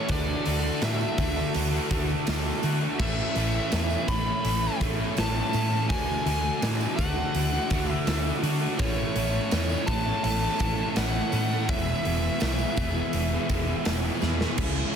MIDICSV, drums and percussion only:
0, 0, Header, 1, 2, 480
1, 0, Start_track
1, 0, Key_signature, 3, "major"
1, 0, Tempo, 723764
1, 68, Time_signature, 4, 2, 24, 8
1, 9919, End_track
2, 0, Start_track
2, 0, Title_t, "Drums"
2, 57, Note_on_c, 9, 46, 83
2, 62, Note_on_c, 9, 36, 104
2, 123, Note_off_c, 9, 46, 0
2, 128, Note_off_c, 9, 36, 0
2, 188, Note_on_c, 9, 54, 26
2, 254, Note_off_c, 9, 54, 0
2, 302, Note_on_c, 9, 46, 63
2, 369, Note_off_c, 9, 46, 0
2, 542, Note_on_c, 9, 46, 79
2, 546, Note_on_c, 9, 54, 92
2, 547, Note_on_c, 9, 38, 107
2, 608, Note_off_c, 9, 46, 0
2, 613, Note_off_c, 9, 54, 0
2, 614, Note_off_c, 9, 38, 0
2, 669, Note_on_c, 9, 54, 68
2, 735, Note_off_c, 9, 54, 0
2, 782, Note_on_c, 9, 46, 62
2, 784, Note_on_c, 9, 36, 91
2, 788, Note_on_c, 9, 54, 73
2, 849, Note_off_c, 9, 46, 0
2, 850, Note_off_c, 9, 36, 0
2, 854, Note_off_c, 9, 54, 0
2, 905, Note_on_c, 9, 54, 25
2, 971, Note_off_c, 9, 54, 0
2, 1025, Note_on_c, 9, 46, 82
2, 1026, Note_on_c, 9, 54, 24
2, 1091, Note_off_c, 9, 46, 0
2, 1092, Note_off_c, 9, 54, 0
2, 1145, Note_on_c, 9, 54, 29
2, 1212, Note_off_c, 9, 54, 0
2, 1265, Note_on_c, 9, 54, 74
2, 1266, Note_on_c, 9, 36, 80
2, 1266, Note_on_c, 9, 46, 60
2, 1331, Note_off_c, 9, 54, 0
2, 1332, Note_off_c, 9, 36, 0
2, 1332, Note_off_c, 9, 46, 0
2, 1389, Note_on_c, 9, 54, 27
2, 1455, Note_off_c, 9, 54, 0
2, 1503, Note_on_c, 9, 54, 98
2, 1506, Note_on_c, 9, 46, 83
2, 1511, Note_on_c, 9, 38, 111
2, 1569, Note_off_c, 9, 54, 0
2, 1572, Note_off_c, 9, 46, 0
2, 1577, Note_off_c, 9, 38, 0
2, 1626, Note_on_c, 9, 54, 28
2, 1692, Note_off_c, 9, 54, 0
2, 1743, Note_on_c, 9, 54, 78
2, 1746, Note_on_c, 9, 46, 57
2, 1809, Note_off_c, 9, 54, 0
2, 1813, Note_off_c, 9, 46, 0
2, 1863, Note_on_c, 9, 54, 26
2, 1929, Note_off_c, 9, 54, 0
2, 1986, Note_on_c, 9, 54, 32
2, 1987, Note_on_c, 9, 36, 115
2, 1987, Note_on_c, 9, 49, 93
2, 2052, Note_off_c, 9, 54, 0
2, 2053, Note_off_c, 9, 36, 0
2, 2053, Note_off_c, 9, 49, 0
2, 2225, Note_on_c, 9, 46, 57
2, 2292, Note_off_c, 9, 46, 0
2, 2345, Note_on_c, 9, 54, 30
2, 2411, Note_off_c, 9, 54, 0
2, 2466, Note_on_c, 9, 46, 75
2, 2466, Note_on_c, 9, 54, 102
2, 2471, Note_on_c, 9, 38, 109
2, 2532, Note_off_c, 9, 46, 0
2, 2532, Note_off_c, 9, 54, 0
2, 2538, Note_off_c, 9, 38, 0
2, 2589, Note_on_c, 9, 54, 77
2, 2656, Note_off_c, 9, 54, 0
2, 2706, Note_on_c, 9, 54, 80
2, 2708, Note_on_c, 9, 36, 87
2, 2708, Note_on_c, 9, 46, 60
2, 2772, Note_off_c, 9, 54, 0
2, 2774, Note_off_c, 9, 36, 0
2, 2774, Note_off_c, 9, 46, 0
2, 2949, Note_on_c, 9, 46, 75
2, 3016, Note_off_c, 9, 46, 0
2, 3072, Note_on_c, 9, 54, 32
2, 3138, Note_off_c, 9, 54, 0
2, 3188, Note_on_c, 9, 54, 81
2, 3191, Note_on_c, 9, 36, 88
2, 3191, Note_on_c, 9, 46, 58
2, 3254, Note_off_c, 9, 54, 0
2, 3257, Note_off_c, 9, 36, 0
2, 3257, Note_off_c, 9, 46, 0
2, 3427, Note_on_c, 9, 54, 101
2, 3433, Note_on_c, 9, 46, 80
2, 3438, Note_on_c, 9, 38, 111
2, 3493, Note_off_c, 9, 54, 0
2, 3499, Note_off_c, 9, 46, 0
2, 3504, Note_off_c, 9, 38, 0
2, 3668, Note_on_c, 9, 54, 82
2, 3676, Note_on_c, 9, 46, 53
2, 3734, Note_off_c, 9, 54, 0
2, 3743, Note_off_c, 9, 46, 0
2, 3787, Note_on_c, 9, 54, 28
2, 3854, Note_off_c, 9, 54, 0
2, 3907, Note_on_c, 9, 54, 32
2, 3913, Note_on_c, 9, 36, 113
2, 3916, Note_on_c, 9, 46, 73
2, 3973, Note_off_c, 9, 54, 0
2, 3980, Note_off_c, 9, 36, 0
2, 3982, Note_off_c, 9, 46, 0
2, 4156, Note_on_c, 9, 46, 59
2, 4222, Note_off_c, 9, 46, 0
2, 4272, Note_on_c, 9, 54, 32
2, 4338, Note_off_c, 9, 54, 0
2, 4393, Note_on_c, 9, 46, 74
2, 4393, Note_on_c, 9, 54, 106
2, 4398, Note_on_c, 9, 38, 103
2, 4459, Note_off_c, 9, 46, 0
2, 4459, Note_off_c, 9, 54, 0
2, 4465, Note_off_c, 9, 38, 0
2, 4514, Note_on_c, 9, 54, 78
2, 4581, Note_off_c, 9, 54, 0
2, 4633, Note_on_c, 9, 46, 64
2, 4633, Note_on_c, 9, 54, 83
2, 4634, Note_on_c, 9, 36, 92
2, 4699, Note_off_c, 9, 54, 0
2, 4700, Note_off_c, 9, 36, 0
2, 4700, Note_off_c, 9, 46, 0
2, 4872, Note_on_c, 9, 46, 78
2, 4938, Note_off_c, 9, 46, 0
2, 4994, Note_on_c, 9, 54, 28
2, 5060, Note_off_c, 9, 54, 0
2, 5109, Note_on_c, 9, 46, 64
2, 5111, Note_on_c, 9, 54, 77
2, 5113, Note_on_c, 9, 36, 86
2, 5176, Note_off_c, 9, 46, 0
2, 5178, Note_off_c, 9, 54, 0
2, 5179, Note_off_c, 9, 36, 0
2, 5353, Note_on_c, 9, 46, 82
2, 5354, Note_on_c, 9, 54, 83
2, 5358, Note_on_c, 9, 38, 113
2, 5419, Note_off_c, 9, 46, 0
2, 5420, Note_off_c, 9, 54, 0
2, 5425, Note_off_c, 9, 38, 0
2, 5595, Note_on_c, 9, 46, 63
2, 5595, Note_on_c, 9, 54, 71
2, 5661, Note_off_c, 9, 46, 0
2, 5661, Note_off_c, 9, 54, 0
2, 5714, Note_on_c, 9, 54, 23
2, 5780, Note_off_c, 9, 54, 0
2, 5831, Note_on_c, 9, 46, 83
2, 5833, Note_on_c, 9, 36, 111
2, 5897, Note_off_c, 9, 46, 0
2, 5899, Note_off_c, 9, 36, 0
2, 6073, Note_on_c, 9, 46, 62
2, 6139, Note_off_c, 9, 46, 0
2, 6194, Note_on_c, 9, 54, 26
2, 6260, Note_off_c, 9, 54, 0
2, 6310, Note_on_c, 9, 46, 80
2, 6310, Note_on_c, 9, 54, 95
2, 6316, Note_on_c, 9, 38, 116
2, 6376, Note_off_c, 9, 54, 0
2, 6377, Note_off_c, 9, 46, 0
2, 6382, Note_off_c, 9, 38, 0
2, 6428, Note_on_c, 9, 54, 64
2, 6494, Note_off_c, 9, 54, 0
2, 6546, Note_on_c, 9, 54, 65
2, 6549, Note_on_c, 9, 46, 61
2, 6552, Note_on_c, 9, 36, 85
2, 6613, Note_off_c, 9, 54, 0
2, 6615, Note_off_c, 9, 46, 0
2, 6618, Note_off_c, 9, 36, 0
2, 6791, Note_on_c, 9, 46, 72
2, 6858, Note_off_c, 9, 46, 0
2, 6906, Note_on_c, 9, 54, 26
2, 6973, Note_off_c, 9, 54, 0
2, 7024, Note_on_c, 9, 54, 71
2, 7029, Note_on_c, 9, 46, 56
2, 7032, Note_on_c, 9, 36, 84
2, 7091, Note_off_c, 9, 54, 0
2, 7095, Note_off_c, 9, 46, 0
2, 7098, Note_off_c, 9, 36, 0
2, 7269, Note_on_c, 9, 46, 78
2, 7269, Note_on_c, 9, 54, 86
2, 7274, Note_on_c, 9, 38, 109
2, 7335, Note_off_c, 9, 46, 0
2, 7335, Note_off_c, 9, 54, 0
2, 7341, Note_off_c, 9, 38, 0
2, 7508, Note_on_c, 9, 54, 75
2, 7514, Note_on_c, 9, 46, 56
2, 7574, Note_off_c, 9, 54, 0
2, 7580, Note_off_c, 9, 46, 0
2, 7632, Note_on_c, 9, 54, 24
2, 7699, Note_off_c, 9, 54, 0
2, 7750, Note_on_c, 9, 54, 29
2, 7753, Note_on_c, 9, 36, 121
2, 7754, Note_on_c, 9, 46, 80
2, 7816, Note_off_c, 9, 54, 0
2, 7819, Note_off_c, 9, 36, 0
2, 7820, Note_off_c, 9, 46, 0
2, 7990, Note_on_c, 9, 54, 27
2, 7993, Note_on_c, 9, 46, 57
2, 8056, Note_off_c, 9, 54, 0
2, 8060, Note_off_c, 9, 46, 0
2, 8106, Note_on_c, 9, 54, 28
2, 8173, Note_off_c, 9, 54, 0
2, 8224, Note_on_c, 9, 54, 94
2, 8229, Note_on_c, 9, 46, 74
2, 8235, Note_on_c, 9, 38, 109
2, 8291, Note_off_c, 9, 54, 0
2, 8296, Note_off_c, 9, 46, 0
2, 8301, Note_off_c, 9, 38, 0
2, 8346, Note_on_c, 9, 54, 67
2, 8413, Note_off_c, 9, 54, 0
2, 8465, Note_on_c, 9, 54, 67
2, 8472, Note_on_c, 9, 36, 94
2, 8472, Note_on_c, 9, 46, 62
2, 8532, Note_off_c, 9, 54, 0
2, 8538, Note_off_c, 9, 46, 0
2, 8539, Note_off_c, 9, 36, 0
2, 8585, Note_on_c, 9, 54, 26
2, 8652, Note_off_c, 9, 54, 0
2, 8708, Note_on_c, 9, 46, 72
2, 8708, Note_on_c, 9, 54, 25
2, 8774, Note_off_c, 9, 54, 0
2, 8775, Note_off_c, 9, 46, 0
2, 8948, Note_on_c, 9, 54, 71
2, 8950, Note_on_c, 9, 46, 65
2, 8951, Note_on_c, 9, 36, 86
2, 9015, Note_off_c, 9, 54, 0
2, 9016, Note_off_c, 9, 46, 0
2, 9018, Note_off_c, 9, 36, 0
2, 9068, Note_on_c, 9, 54, 26
2, 9135, Note_off_c, 9, 54, 0
2, 9185, Note_on_c, 9, 54, 80
2, 9188, Note_on_c, 9, 46, 83
2, 9193, Note_on_c, 9, 38, 115
2, 9252, Note_off_c, 9, 54, 0
2, 9254, Note_off_c, 9, 46, 0
2, 9260, Note_off_c, 9, 38, 0
2, 9310, Note_on_c, 9, 54, 25
2, 9376, Note_off_c, 9, 54, 0
2, 9428, Note_on_c, 9, 54, 71
2, 9434, Note_on_c, 9, 38, 62
2, 9495, Note_off_c, 9, 54, 0
2, 9501, Note_off_c, 9, 38, 0
2, 9548, Note_on_c, 9, 54, 23
2, 9556, Note_on_c, 9, 38, 92
2, 9614, Note_off_c, 9, 54, 0
2, 9622, Note_off_c, 9, 38, 0
2, 9667, Note_on_c, 9, 57, 119
2, 9672, Note_on_c, 9, 36, 114
2, 9733, Note_off_c, 9, 57, 0
2, 9738, Note_off_c, 9, 36, 0
2, 9919, End_track
0, 0, End_of_file